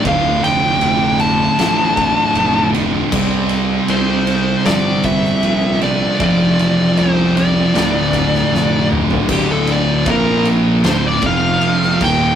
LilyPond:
<<
  \new Staff \with { instrumentName = "Lead electric guitar" } { \time 4/4 \key d \minor \tempo 4 = 78 f''8 g''4 a''2 r8 | r4 c''4 d''8 e''4 d''8~ | d''4 c''8 d''2 r8 | g'16 a'16 d''8 bes'8 r8 c''16 d''16 f''4 g''8 | }
  \new Staff \with { instrumentName = "Distorted electric guitar" } { \clef bass \time 4/4 \key d \minor <d, a, d>2 <d, a, d>2 | <c g c'>2 <c g c'>2 | <f, c f>2 <d, a, d>2 | <d, a, d>4 <bes, f bes>4 <d, a, d>8 <f, c f>4 <ees, bes, ees>8 | }
  \new Staff \with { instrumentName = "Distorted electric guitar" } { \clef bass \time 4/4 \key d \minor <d, a, d>2.~ <d, a, d>8 <d, a, d>8 | <c g c'>2.~ <c g c'>8 <c g c'>8 | <f, c f>2 <d, a, d>2 | <d, a, d>4 <bes, f bes>4 <d, a, d>8 <f, c f>4 <ees, bes, ees>8 | }
  \new Staff \with { instrumentName = "Distorted electric guitar" } { \clef bass \time 4/4 \key d \minor <d, a, d>1 | <c g c'>1 | <f, c f>2 <d, a, d>2 | <d, a, d>4 <bes, f bes>4 <d, a, d>8 <f, c f>4 <ees, bes, ees>8 | }
  \new Staff \with { instrumentName = "Fingered electric bass" } { \clef bass \time 4/4 \key d \minor d,,8 f,,8 f,,4 a,,4 f,,4 | c,4 c,4 g,,4 bes,,4 | f,,8 a,,8 c,4 d,,4 f,,4 | d,,4 bes,,4 d,,8 f,,4 ees,,8 | }
  \new DrumStaff \with { instrumentName = "Drums" } \drummode { \time 4/4 <bd cymr>8 cymr8 cymr8 cymr8 <cymr sn>8 <bd cymr>8 cymr8 cymr8 | <cymc bd>8 cymr8 cymr8 cymr8 <cymr sn>8 <bd cymr>16 sn16 cymr8 cymr8 | <bd cymr>8 cymr8 cymr8 cymr8 <cymr sn>8 <bd cymr>16 sn16 sn8 toml16 tomfh16 | <cymc bd>8 cymr8 <bd cymr>8 cymr8 <cymr sn>8 <bd cymr>8 cymr16 sn16 <cymc bd>8 | }
>>